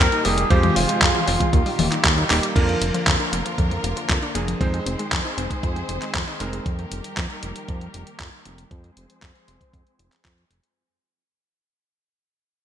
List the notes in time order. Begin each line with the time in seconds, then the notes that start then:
Already playing: A#2 D#3 G3 A#3 D#4 G4 A#4
0.00 D#3
0.12 D#4, closed hi-hat
0.25 F1 G3 A#3 D#4 G4 G#4, open hi-hat
0.38 G3, closed hi-hat
0.50 F2 C3 F3 G#3 C4 F4 G4 G#4 C5, kick, closed hi-hat
0.63 G#3, closed hi-hat, high tom
0.76 F1 C4 F4, open hi-hat
0.89 G#3, closed hi-hat
1.02 F2 F3, kick, clap, closed hi-hat
1.15 F4, closed hi-hat, high tom
1.27 F1 C4, open hi-hat
1.40 G#3, kick, closed hi-hat, high tom
1.53 D#2 A#2 D#3 G3 D#4 G4, kick, closed hi-hat
1.66 G3, open hi-hat
1.79 D#1 D#3, open hi-hat, high tom
1.92 D#4, clap, closed hi-hat
2.04 D#2 A#3, kick, clap, closed hi-hat
2.17 D#4, closed hi-hat
2.30 D#1 D#3 G3 A#3 D#4 G4, clap, open hi-hat
2.43 A#4, closed hi-hat
2.55 F2 D3 F3 A#3 D4 F4 A#4, kick, closed hi-hat, crash
2.69 F3, closed hi-hat
2.81 F1 A#3, closed hi-hat
2.94 F3, closed hi-hat
3.07 F2 D3, kick, clap, closed hi-hat
3.20 D4, closed hi-hat
3.32 F1 A#3, closed hi-hat
3.45 F3, closed hi-hat
3.58 F2 D3, kick, closed hi-hat
3.71 F3, closed hi-hat
3.84 F1 A#3, closed hi-hat
3.96 F3, closed hi-hat
4.09 F2 D3, kick, clap, closed hi-hat
4.22 D4, closed hi-hat
4.35 F1 F3 A#3 D4 G#4, closed hi-hat
4.48 F3, closed hi-hat
4.60 F2 D#3 G#3 C4 D#4 G#4 C5, kick, closed hi-hat
4.73 G#3, closed hi-hat
4.86 F1 C4, closed hi-hat
4.99 G#3, closed hi-hat
5.12 F2 D#3, kick, clap, closed hi-hat
5.25 D#4, closed hi-hat
5.38 F1 C4, closed hi-hat
5.50 G#3, kick, closed hi-hat
5.63 F2 D#3, kick, closed hi-hat
5.76 G#3, closed hi-hat
5.89 F1 C4, closed hi-hat
6.02 G#3, clap, closed hi-hat
6.14 F2 D#3, kick, clap, closed hi-hat
6.27 D#4, closed hi-hat
6.40 F1 G#3 C4 D#4 A#4, closed hi-hat
6.53 G#3, closed hi-hat
6.66 F2 D#3 G3 A#3 G4 A#4, kick, closed hi-hat
6.79 closed hi-hat
6.92 F1, closed hi-hat
7.04 closed hi-hat
7.17 F2, kick, clap, closed hi-hat
7.30 closed hi-hat
7.43 F1, closed hi-hat
7.56 closed hi-hat
7.68 F2, kick, closed hi-hat
7.81 closed hi-hat
7.94 F1, closed hi-hat
8.07 closed hi-hat
8.20 F2, kick, clap, closed hi-hat
8.33 closed hi-hat
8.45 F1, closed hi-hat
8.58 closed hi-hat
8.71 F2 F3 G#3 C4 G#4 C5, kick, closed hi-hat
8.84 closed hi-hat
8.97 F1, closed hi-hat
9.10 closed hi-hat
9.22 F2, kick, clap, closed hi-hat
9.35 closed hi-hat
9.48 F1, closed hi-hat
9.61 kick, closed hi-hat
9.74 F2, kick, closed hi-hat
9.87 closed hi-hat
9.99 F1, closed hi-hat
10.12 clap, closed hi-hat
10.25 F2, kick, clap, closed hi-hat
10.38 closed hi-hat
10.51 F1, closed hi-hat
10.63 closed hi-hat